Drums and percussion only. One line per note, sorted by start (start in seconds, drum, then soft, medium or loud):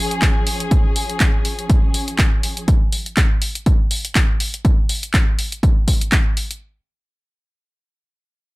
0.11 closed hi-hat medium
0.22 kick loud
0.22 clap loud
0.22 closed hi-hat soft
0.47 open hi-hat loud
0.60 closed hi-hat medium
0.71 kick loud
0.71 closed hi-hat soft
0.96 open hi-hat medium
1.10 closed hi-hat medium
1.20 kick loud
1.20 clap loud
1.20 closed hi-hat soft
1.45 open hi-hat medium
1.59 closed hi-hat medium
1.70 kick loud
1.70 closed hi-hat soft
1.94 open hi-hat loud
2.08 closed hi-hat medium
2.19 kick loud
2.19 clap loud
2.19 closed hi-hat soft
2.43 open hi-hat loud
2.57 closed hi-hat medium
2.68 kick loud
2.68 closed hi-hat soft
2.92 open hi-hat medium
3.06 closed hi-hat medium
3.17 kick loud
3.17 clap loud
3.17 closed hi-hat medium
3.42 open hi-hat medium
3.55 closed hi-hat medium
3.66 kick loud
3.66 closed hi-hat soft
3.91 open hi-hat medium
4.05 closed hi-hat medium
4.15 kick loud
4.15 clap loud
4.15 closed hi-hat medium
4.40 open hi-hat loud
4.54 closed hi-hat medium
4.65 kick loud
4.65 closed hi-hat soft
4.89 open hi-hat medium
5.03 closed hi-hat medium
5.14 kick loud
5.14 clap loud
5.14 closed hi-hat soft
5.39 open hi-hat medium
5.52 closed hi-hat medium
5.63 kick loud
5.63 closed hi-hat medium
5.88 kick medium
5.88 open hi-hat loud
6.01 closed hi-hat medium
6.12 kick loud
6.12 clap loud
6.12 closed hi-hat medium
6.37 open hi-hat medium
6.51 closed hi-hat medium